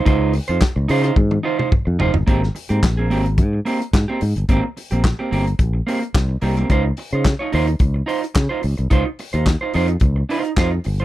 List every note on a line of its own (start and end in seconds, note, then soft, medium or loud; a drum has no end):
0.05 0.38 C#2 loud
0.05 0.32 D#4 loud
0.05 0.32 F4 medium
0.05 0.33 C5 loud
0.05 kick loud
0.05 closed hi-hat medium
0.33 muted clean electric guitar stroke soft
0.33 open hi-hat medium
0.48 0.59 F2 medium
0.48 0.60 D#4 soft
0.48 0.59 F4 medium
0.48 0.59 C5 medium
0.48 closed hi-hat medium
0.61 muted clean electric guitar stroke medium
0.61 kick loud
0.61 snare loud
0.61 clap medium
0.61 closed hi-hat medium
0.76 0.86 C#2 medium
0.76 muted clean electric guitar stroke soft
0.88 1.10 C#3 loud
0.88 1.04 D#4 medium
0.88 1.03 F4 loud
0.88 1.02 C5 loud
0.88 open hi-hat medium
1.03 1.15 D#4 medium
1.03 1.15 F4 medium
1.03 1.14 C5 medium
1.03 closed hi-hat medium
1.16 1.37 G#2 loud
1.16 muted clean electric guitar stroke medium
1.16 kick loud
1.16 high tom medium
1.31 muted clean electric guitar stroke soft
1.31 high tom medium
1.43 1.59 D#4 medium
1.43 1.58 F4 medium
1.43 1.57 C5 medium
1.59 1.70 D#4 soft
1.59 1.70 F4 medium
1.59 1.69 C5 medium
1.59 mid tom medium
1.71 muted clean electric guitar stroke soft
1.71 kick loud
1.71 mid tom medium
1.85 1.97 F2 medium
1.85 muted clean electric guitar stroke soft
1.99 2.11 F#1 loud
1.99 2.14 D#4 medium
1.99 2.14 F4 medium
1.99 2.13 C5 medium
1.99 floor tom loud
2.14 2.24 G1 medium
2.14 muted clean electric guitar stroke medium
2.14 floor tom loud
2.27 2.48 G#1 medium
2.27 2.42 A#3 medium
2.27 2.42 C4 loud
2.27 2.41 G4 loud
2.27 kick loud
2.27 closed hi-hat medium
2.42 muted clean electric guitar stroke soft
2.42 snare soft
2.55 muted clean electric guitar stroke soft
2.55 open hi-hat medium
2.69 2.80 G#2 medium
2.69 2.81 A#3 soft
2.69 2.81 C4 medium
2.69 2.80 G4 medium
2.69 closed hi-hat soft
2.83 3.11 A#1 medium
2.83 muted clean electric guitar stroke soft
2.83 kick medium
2.83 snare loud
2.83 clap medium
2.83 closed hi-hat medium
2.97 3.09 A#3 medium
2.97 3.09 C4 medium
2.97 3.08 G#4 medium
3.10 3.40 G#1 medium
3.10 3.25 A#3 medium
3.10 3.26 C4 loud
3.10 3.24 G4 medium
3.10 open hi-hat medium
3.26 muted clean electric guitar stroke medium
3.26 closed hi-hat soft
3.38 3.59 G#2 medium
3.38 muted clean electric guitar stroke soft
3.38 kick loud
3.38 closed hi-hat medium
3.53 muted clean electric guitar stroke soft
3.65 3.81 A#3 medium
3.65 3.80 C4 medium
3.65 3.79 G4 medium
3.65 open hi-hat medium
3.81 muted clean electric guitar stroke soft
3.81 closed hi-hat soft
3.93 4.04 G#2 medium
3.93 muted clean electric guitar stroke soft
3.93 kick loud
3.93 snare loud
3.93 clap medium
3.93 closed hi-hat medium
4.08 4.20 A#3 medium
4.08 4.21 C4 medium
4.08 4.21 G4 medium
4.21 4.33 G#2 medium
4.21 muted clean electric guitar stroke soft
4.21 open hi-hat medium
4.36 4.46 G1 medium
4.36 muted clean electric guitar stroke soft
4.36 closed hi-hat soft
4.49 4.60 G#1 loud
4.49 4.64 A#3 medium
4.49 4.64 C4 loud
4.49 4.62 G4 medium
4.49 kick loud
4.49 closed hi-hat medium
4.63 muted clean electric guitar stroke soft
4.77 muted clean electric guitar stroke soft
4.77 open hi-hat medium
4.91 5.12 A#1 medium
4.91 5.03 A#3 soft
4.91 5.02 C4 medium
4.91 5.01 G4 soft
4.91 closed hi-hat soft
5.04 kick medium
5.04 snare loud
5.04 clap medium
5.04 closed hi-hat medium
5.19 5.30 A#3 medium
5.19 5.30 C4 medium
5.19 5.29 G4 medium
5.31 5.53 G1 medium
5.31 5.46 A#3 medium
5.31 5.46 C4 medium
5.31 5.45 G4 loud
5.31 open hi-hat medium
5.46 muted clean electric guitar stroke medium
5.46 closed hi-hat soft
5.59 5.80 A#1 medium
5.59 muted clean electric guitar stroke soft
5.59 kick loud
5.59 closed hi-hat medium
5.73 muted clean electric guitar stroke soft
5.87 6.02 A#3 medium
5.87 6.01 C4 medium
5.87 5.99 G4 medium
5.87 open hi-hat medium
6.01 muted clean electric guitar stroke soft
6.01 closed hi-hat soft
6.14 6.35 C2 medium
6.14 muted clean electric guitar stroke soft
6.14 kick loud
6.14 snare loud
6.14 clap loud
6.14 closed hi-hat medium
6.29 muted clean electric guitar stroke soft
6.42 6.63 C2 loud
6.42 6.57 A#3 medium
6.42 6.57 C4 medium
6.42 6.56 G4 medium
6.42 open hi-hat medium
6.57 6.68 A#3 medium
6.57 6.68 C4 medium
6.57 6.67 G4 medium
6.57 closed hi-hat soft
6.70 6.91 C#2 loud
6.70 6.85 D#4 medium
6.70 6.85 F4 medium
6.70 6.83 C5 medium
6.70 kick loud
6.70 closed hi-hat medium
6.85 muted clean electric guitar stroke soft
6.97 muted clean electric guitar stroke soft
6.97 open hi-hat medium
7.11 7.33 C#3 medium
7.11 7.24 D#4 medium
7.11 7.24 F4 soft
7.11 7.23 C5 medium
7.11 closed hi-hat soft
7.25 muted clean electric guitar stroke soft
7.25 kick medium
7.25 snare loud
7.25 clap medium
7.25 closed hi-hat medium
7.39 7.51 D#4 medium
7.39 7.51 F4 medium
7.39 7.50 C#5 medium
7.52 7.74 D#2 medium
7.52 7.68 D#4 medium
7.52 7.68 F4 medium
7.52 7.66 C5 medium
7.52 open hi-hat medium
7.67 muted clean electric guitar stroke soft
7.67 closed hi-hat soft
7.79 8.01 C#2 medium
7.79 muted clean electric guitar stroke soft
7.79 kick loud
7.79 closed hi-hat medium
7.94 muted clean electric guitar stroke soft
8.06 8.22 D#4 medium
8.06 8.23 F4 medium
8.06 8.21 C5 medium
8.06 open hi-hat medium
8.22 muted clean electric guitar stroke soft
8.22 closed hi-hat soft
8.34 8.47 C#3 medium
8.34 muted clean electric guitar stroke soft
8.34 kick loud
8.34 snare loud
8.34 clap loud
8.34 closed hi-hat medium
8.49 8.60 D#4 medium
8.49 8.61 F4 medium
8.49 8.62 C5 medium
8.62 8.75 C#2 medium
8.62 muted clean electric guitar stroke soft
8.62 open hi-hat medium
8.77 8.88 C2 medium
8.77 muted clean electric guitar stroke soft
8.77 closed hi-hat soft
8.90 9.02 C#2 loud
8.90 9.06 D#4 medium
8.90 9.06 F4 loud
8.90 9.04 C5 loud
8.90 kick loud
8.90 closed hi-hat medium
9.06 muted clean electric guitar stroke soft
9.19 muted clean electric guitar stroke soft
9.19 open hi-hat medium
9.33 9.54 D#2 medium
9.33 9.45 D#4 soft
9.33 9.44 F4 soft
9.33 9.44 C5 soft
9.33 closed hi-hat soft
9.46 muted clean electric guitar stroke soft
9.46 kick loud
9.46 snare medium
9.46 clap medium
9.46 closed hi-hat medium
9.61 9.73 D#4 soft
9.61 9.72 F4 medium
9.61 9.72 C5 medium
9.74 9.95 F2 loud
9.74 9.89 D#4 medium
9.74 9.89 F4 medium
9.74 9.87 C5 medium
9.74 open hi-hat medium
9.88 muted clean electric guitar stroke soft
9.88 closed hi-hat soft
10.00 10.22 C#2 medium
10.00 muted clean electric guitar stroke soft
10.00 kick loud
10.00 closed hi-hat medium
10.16 muted clean electric guitar stroke soft
10.29 10.50 D#4 medium
10.29 10.44 F4 medium
10.29 10.43 C5 medium
10.29 open hi-hat medium
10.44 muted clean electric guitar stroke soft
10.44 closed hi-hat medium
10.57 10.78 F2 medium
10.57 10.72 D#4 medium
10.57 10.72 F4 loud
10.57 10.70 C5 medium
10.57 kick loud
10.57 snare loud
10.57 clap medium
10.57 closed hi-hat medium
10.72 muted clean electric guitar stroke soft
10.84 11.05 G1 medium
10.84 muted clean electric guitar stroke soft
10.84 open hi-hat medium
10.99 11.05 F4 medium
10.99 11.05 C5 medium
10.99 closed hi-hat soft